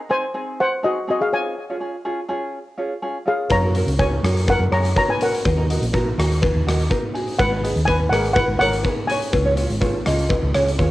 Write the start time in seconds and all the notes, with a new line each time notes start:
0.09 C4 D#4 G#4 C5 G#5
0.34 C4 D#4 G#4
0.60 C5 F#5
0.83 C4 D#4 F#4 G#4 D#5
1.07 C4 D#4 F#4 G#4 D#5
1.21 G#4 F5
1.33 C4 D#4 F4 C#5 G#5
1.70 C#4 F4 G#4
1.80 C#4 F4 G#4
2.05 C#4 F4 G#4
2.29 C#4 F4 G#4
2.78 C#4 F4 G#4
3.02 C#4 F4 G#4
3.26 C#4 F4 G#4 F5
3.50 F#2 C#5 A#5, kick, closed hi-hat, cowbell
3.63 C#4 F#4 A#4
3.75 C#4 F#4 A#4, closed hi-hat
3.87 C#2, closed hi-hat
3.99 C#4 F#4 C#5 G#5, kick, closed hi-hat, cowbell
4.23 F#2 C#4 F#4 A#4, cross-stick, closed hi-hat
4.37 closed hi-hat
4.48 A#4 F#5, kick, closed hi-hat, cowbell
4.59 F#2
4.72 F#2 C#4 F#4 G#4 C#5 A#5, cross-stick, closed hi-hat
4.85 closed hi-hat
4.96 C#4 F#4 A#4 C#5 A#5, kick, closed hi-hat, cowbell
5.09 B4 G#5
5.21 C#4 F#4 A#4 F#5, closed hi-hat
5.34 closed hi-hat
5.45 D#2, kick, closed hi-hat, cowbell
5.57 D#4 F#4 A#4
5.70 D#4 F#4 A#4, closed hi-hat
5.82 A#1, closed hi-hat
5.93 D#4 F#4 A#4, kick, closed hi-hat, cowbell
6.18 D#2 D#4 F#4 A#4, cross-stick, closed hi-hat
6.32 closed hi-hat
6.42 kick, closed hi-hat, cowbell
6.54 D#2
6.66 D#2 D#4 F#4 A#4, cross-stick, closed hi-hat
6.80 closed hi-hat
6.89 D#4 F#4 A#4, kick, closed hi-hat, cowbell
7.14 D#4 F#4 G#4, closed hi-hat
7.28 closed hi-hat
7.39 G#1 B4 F#5, kick, closed hi-hat, cowbell
7.52 D#4 G#4 B4
7.63 D#4 G#4 B4, closed hi-hat
7.76 D#2, closed hi-hat
7.85 D#4 G#4 B4 G#5, kick, closed hi-hat, cowbell
8.09 G#1 D#4 G#4 A#4 B4 F#5, cross-stick, closed hi-hat
8.25 closed hi-hat
8.33 B4 F#5, kick, closed hi-hat, cowbell
8.48 G#1
8.59 G#1 D#4 G#4 A#4 C#5 F#5, cross-stick, closed hi-hat
8.73 closed hi-hat
8.83 D#4 G#4 B4, kick, closed hi-hat, cowbell
9.07 D#4 G#4 B4 G#5, closed hi-hat
9.11 C#5
9.22 closed hi-hat
9.33 C#2, kick, closed hi-hat, cowbell
9.46 F4 G#4 C#5
9.57 F4 G#4 C#5, closed hi-hat
9.70 G#1, closed hi-hat
9.81 F4 G#4 C#5, kick, closed hi-hat, cowbell
10.06 C#2 F4 G#4 D#5, cross-stick, closed hi-hat
10.19 closed hi-hat
10.29 kick, closed hi-hat, cowbell
10.43 C#2
10.54 C#2 F4 G#4 C#5, cross-stick, closed hi-hat
10.68 closed hi-hat
10.78 D#2 F4 G#4 C#5, kick, closed hi-hat, cowbell